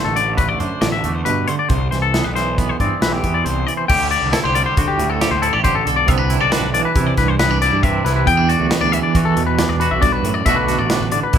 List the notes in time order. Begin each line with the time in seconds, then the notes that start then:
Already playing: D3 A3
0.04 A1 A4
0.16 D3 D5, closed hi-hat
0.37 A3 B4, kick, closed hi-hat
0.49 D5
0.59 F#2 D4 C5, closed hi-hat
0.81 A1 D3 D5, snare, closed hi-hat
0.92 E5
1.04 E2 A3, closed hi-hat
1.15 C5
1.25 G2 B2 B4, closed hi-hat
1.47 D3 C5, closed hi-hat
1.59 D5
1.69 C2 C3 C5, kick, closed hi-hat
1.91 C2 E3 C5, snare, closed hi-hat
2.02 A4
2.14 B3, snare, closed hi-hat
2.24 B1 B4
2.34 E3 C5, snare, closed hi-hat
2.58 B3 B4, kick, closed hi-hat
2.69 C5
2.80 G2 C4 D5, kick, closed hi-hat
3.00 B1 E3 B4, snare, closed hi-hat
3.13 G4
3.23 E2 B3, kick, closed hi-hat
3.34 D5
3.44 C2 C3 C5, closed hi-hat
3.67 E3 D5, closed hi-hat
3.77 C5
3.88 D2 D3 G4 G5, kick, crash
4.11 G4 D5, closed hi-hat
4.23 C2
4.33 E4 A4, snare, closed hi-hat
4.44 C2 G4 C5
4.55 G3 D5, closed hi-hat
4.66 C5
4.77 D3 F#4, kick, closed hi-hat
4.88 G4
4.98 D2 A2, closed hi-hat
5.10 A4
5.21 G4, snare, closed hi-hat
5.31 D2 C5
5.42 E4 A4, closed hi-hat
5.53 A1 G4 D5
5.64 D3 G4 C5, kick, closed hi-hat
5.75 A4
5.86 B1 A4, closed hi-hat
5.96 D5
6.07 C2 C3 B3 E5, kick, closed hi-hat
6.18 D4 B4
6.30 E4, closed hi-hat
6.40 B1 F#4 D5
6.52 D4 B4, snare, closed hi-hat
6.61 B1
6.74 E3 D5, closed hi-hat
6.85 B4
6.95 C3 E4, kick, closed hi-hat
7.07 D5
7.17 C2 G2 B4, kick, snare, closed hi-hat
7.28 C5
7.39 B3 B4, snare, closed hi-hat
7.50 C2 D4
7.62 E4 D5, snare, closed hi-hat
7.72 G2
7.83 C3 D4 E5, kick, closed hi-hat
8.05 C2 E4 B4, snare, closed hi-hat
8.16 B4
8.26 E2 B3 G5, kick, closed hi-hat
8.37 D4
8.48 F#4 D5, closed hi-hat
8.60 D2
8.71 B3 B4, snare, closed hi-hat
8.81 D2 D4 D5
8.92 E3 E5, closed hi-hat
9.03 D5
9.15 E3 F#4, kick, closed hi-hat
9.25 A4
9.36 E2 B2, closed hi-hat
9.47 B4
9.59 D4, snare, closed hi-hat
9.69 E2 D5
9.80 F#4 B4, closed hi-hat
9.91 B1 E5
10.01 G2 D5, kick, snare, closed hi-hat
10.12 B4
10.23 F#2 A2, closed hi-hat
10.34 D5
10.46 B1 B2 D3 A3 D4 F#4 E5, kick, closed hi-hat
10.56 B4
10.68 F#4, snare, closed hi-hat
10.78 A1 D5
10.90 D4 B4, snare, closed hi-hat
11.00 A1
11.12 D3 D5, closed hi-hat
11.23 B4
11.33 B2 E4, kick, closed hi-hat